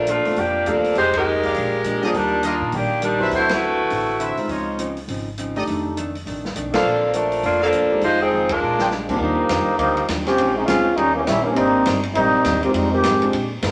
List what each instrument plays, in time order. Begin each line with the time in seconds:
Already playing: upright bass A#1
0.06 hollow-body jazz guitar A#2 F3 A3 D4, saxophone section F4, closed hi-hat
0.11 saxophone section A3 A#3 D4
0.25 grand piano A3 C4 D4 F4, muted upright bass stroke, open hi-hat
0.36 upright bass F1, hollow-body jazz guitar A#2 F3 A3 D4, saxophone section F3 A#3 G4, open hi-hat
0.40 saxophone section D4
0.65 upright bass D#2, hollow-body jazz guitar A#2 F3 A3 D4, saxophone section F3 A#3 D4 A4, grand piano A3 C4 D4 G4, trumpet section A4 A#4 D5 F5, closed hi-hat
0.84 open hi-hat
0.95 upright bass F1, hollow-body jazz guitar F3 A#3 D#4 G#4, saxophone section G#3 D#4 G4 C5, open hi-hat
1.13 saxophone section G#3, kick, ride
1.17 saxophone section D#4 G4 A#4
1.25 hollow-body jazz guitar F3 A#3 D#4 G#4
1.43 trumpet section G4 A#4 D5 F5, kick, open hi-hat
1.54 upright bass A#1, hollow-body jazz guitar A#2 F3 G#3 D4, open hi-hat
1.84 hollow-body jazz guitar A#2 F3 G#3 D4, upright bass A#2, closed hi-hat
2.02 saxophone section F3 A#3 D4 G#4, grand piano G3 A#3 D4 F4, trumpet section G4 A#4 D5 D#5, open hi-hat
2.13 upright bass D#2, hollow-body jazz guitar D#3 G3 A#3 D4, saxophone section G3 D4 D#4 A#4, open hi-hat
2.42 hollow-body jazz guitar D#3 G3 A#3 D4, trumpet section G4 A#4 D5 D#5, closed hi-hat
2.46 saxophone section A#3 D4 D#4 F4
2.61 upright bass A#2
2.71 upright bass A#1, hollow-body jazz guitar D#3 G3 A#3 D4, open hi-hat
2.75 saxophone section D#3 A#3 D4 G4
3.00 hollow-body jazz guitar D#3 G3 A#3 D4, closed hi-hat
3.04 saxophone section G3 D4 D#4 A#4
3.19 grand piano F#3 C4 E4 B4, trumpet section F#4 B4 C5 E5
3.31 upright bass D2, hollow-body jazz guitar D3 C4 F#4 B4, open hi-hat
3.35 saxophone section A3 E4 F#4 C5
3.49 snare, ride
3.53 saxophone section A3 E4 F#4 B4
3.60 hollow-body jazz guitar D3 C4 F#4 B4
3.90 upright bass A1, hollow-body jazz guitar D3 C4 F#4 B4, open hi-hat
4.19 hollow-body jazz guitar D3 C4 F#4 B4, trumpet section B4 C5 E5, closed hi-hat
4.37 grand piano G#3 C4 D#4 F4, muted upright bass stroke, open hi-hat
4.48 upright bass C#2, hollow-body jazz guitar C#3 F3 C4 D#4, trumpet section F4 C5 C#5 D#5, open hi-hat
4.78 hollow-body jazz guitar C#3 F3 C4 D#4, closed hi-hat
4.97 open hi-hat
5.08 upright bass G#1, hollow-body jazz guitar C#3 F3 C4 D#4, open hi-hat
5.38 hollow-body jazz guitar C#3 F3 C4 D#4, closed hi-hat
5.56 grand piano A3 D4 D#4 G4, trumpet section G4 A4 D5 D#5, open hi-hat
5.67 upright bass F1, hollow-body jazz guitar F2 D#3 A3 D4, open hi-hat
5.96 hollow-body jazz guitar F2 D#3 A3 D4, closed hi-hat
6.15 open hi-hat
6.25 upright bass A1, hollow-body jazz guitar F2 D#3 A3 D4, open hi-hat
6.45 snare
6.55 upright bass B1, hollow-body jazz guitar F2 D#3 A3 D4, closed hi-hat
6.73 saxophone section F3 A#3 D4 A4, grand piano C4 D4 F4 A4, trumpet section A4 C5 D5 F5, snare, ride
6.84 upright bass A#1, hollow-body jazz guitar A#2 F3 A3 D4
7.13 hollow-body jazz guitar A#2 F3 A3 D4, saxophone section F3 A3 D4 A#4, closed hi-hat
7.32 open hi-hat
7.43 upright bass F1, hollow-body jazz guitar A#2 F3 A3 D4, saxophone section A3 A#3 D4 F4, open hi-hat
7.60 saxophone section F3 A#3 D4 A4, trumpet section A4 A#4 D5 F5
7.72 upright bass D#2, hollow-body jazz guitar A#2 F3 A3 D4, closed hi-hat
7.92 grand piano G#3 C4 D#4 G4
8.01 upright bass F1, hollow-body jazz guitar F2 D#3 G#3 C4, saxophone section G#3 D#4 F4 C5, open hi-hat
8.22 saxophone section F3 C4 D#4 G#4
8.31 hollow-body jazz guitar F2 D#3 G#3 C4
8.49 saxophone section G#3 D4 F4 A#4, kick, ride
8.61 upright bass A#1, hollow-body jazz guitar A#2 G#3 D4 G4
8.79 trumpet section G#4 C5 D5 G5, snare
8.91 hollow-body jazz guitar A#2 G#3 D4 G4, snare
9.08 grand piano D#2 G3 A#3 D4 F4, trombone section F3 G#3 C4 D4, kick, crash
9.20 upright bass D#2, hollow-body jazz guitar D#3 G3 D4 F4, trombone section F3 G3 A#3 D#4
9.49 upright bass F2, hollow-body jazz guitar D#3 G3 D4 F4, snare, hi-hat pedal, ride
9.67 muted upright bass stroke
9.78 upright bass D2, hollow-body jazz guitar D#3 G3 D4 F4, trombone section F3 G3 A#3 D#4, ride
9.97 ride
10.08 upright bass D#2, hollow-body jazz guitar D#3 G3 D4 F4, snare, hi-hat pedal, ride
10.26 trombone section F3 C4 C#4 G4, snare, ride
10.38 upright bass A#1, hollow-body jazz guitar A#2 G#3 C#4 D#4, ride
10.55 trombone section G#3 C4 C#4 D#4
10.65 upright bass C#2, hollow-body jazz guitar A#2 G#3, trombone section G#3 C4 C#4 F4, snare, hi-hat pedal, ride
10.69 hollow-body jazz guitar C#4 D#4
10.97 upright bass D#2, hollow-body jazz guitar D#3 G3 C#4 E4, trombone section G3 A#3 C#4 D#4, ride
11.14 trombone section E3 G3 A#3 C#4
11.25 upright bass A#1, hollow-body jazz guitar D#3 G3 C#4 E4, trombone section G3 A#3 C#4 E4, snare, hi-hat pedal, ride
11.43 trombone section E3 G3 A#3 C#4, grand piano A#3 C4 D4 D#4 G4
11.55 upright bass G#1, hollow-body jazz guitar G#2 G3 C4 D4, trombone section G3 A#3 C4 D#4, ride
11.85 upright bass G1, hollow-body jazz guitar G#2 G3 C4 D4, snare, hi-hat pedal, ride
12.03 ride
12.15 upright bass A#1, hollow-body jazz guitar G#2 G3 C4 D4, trombone section G3 A#3 C4 D#4, ride
12.44 upright bass D#2, hollow-body jazz guitar G#2 G3 C4 D4, snare, hi-hat pedal, ride
12.63 trombone section D#3 A#3 C4 G4, grand piano G#3 C4 D#4 F4 G4, ride
12.73 upright bass F2, hollow-body jazz guitar F3 G#3 D#4 G4, trombone section G3 G#3 C4 D#4, ride
12.91 trombone section D#3 G#3 C4 G4
13.03 upright bass G#2, hollow-body jazz guitar F3 G#3 D#4 G4, snare, hi-hat pedal, ride
13.22 grand piano G#3 C4 D4 F4 G4, ride
13.32 hollow-body jazz guitar A#2 G#3 D4 G4, upright bass A#2, ride
13.62 upright bass G2, hollow-body jazz guitar A#2 G#3 D4 G4, grand piano G#3 C4 D4 F4 A#4, snare, hi-hat pedal, ride